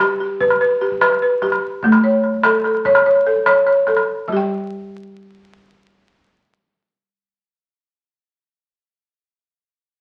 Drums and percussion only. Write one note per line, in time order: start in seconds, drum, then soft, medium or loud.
0.40 calabash thump medium
0.50 calabash click soft
0.81 calabash click soft
0.92 calabash thump medium
1.01 calabash click medium
1.12 calabash click soft
1.42 calabash thump medium
1.42 calabash click soft
1.52 calabash click soft
1.83 calabash thump medium
1.83 calabash click soft
1.92 calabash click medium
2.24 calabash click soft
2.34 calabash thump soft
2.43 calabash click medium
2.64 calabash click soft
2.75 calabash click soft
2.85 calabash thump medium
2.85 calabash click soft
2.95 calabash click medium
3.16 calabash click soft
3.36 calabash thump medium
3.46 calabash click medium
3.67 calabash click soft
3.87 calabash thump medium
3.87 calabash click soft
3.97 calabash click soft
4.28 calabash thump medium